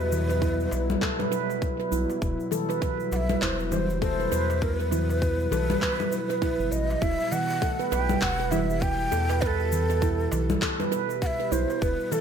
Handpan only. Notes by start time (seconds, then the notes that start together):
0.29 B4
0.42 E4
1.01 A4
1.19 B4
1.32 B4
1.80 B4
1.92 E4
2.52 A4
2.70 B4
2.82 B4
3.30 B4
3.42 E4
4.02 A4
4.20 B4
4.32 B4
4.80 B4
4.92 E4
5.52 A4
5.70 B4
5.82 B4
6.30 B4
6.42 E4
7.02 E4
7.62 A4
7.79 B4
7.92 B4
8.40 B4
8.52 E4
9.12 A4
9.30 B4
9.42 B4
9.90 B4
10.02 E4
10.62 A4
10.80 B4
10.92 B4
11.40 B4
11.52 E4
12.12 A4